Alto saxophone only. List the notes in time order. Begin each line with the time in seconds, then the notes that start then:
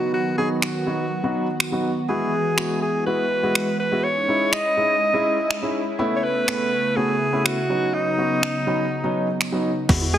Already playing: F#4
0.14 F#4
0.38 G#4
0.62 F#4
2.09 G#4
2.82 G#4
3.06 B4
3.80 B4
4.04 C#5
4.53 D#5
6.16 C#5
6.24 B4
6.97 G#4
7.45 F#4
7.94 D#4
10.14 G#4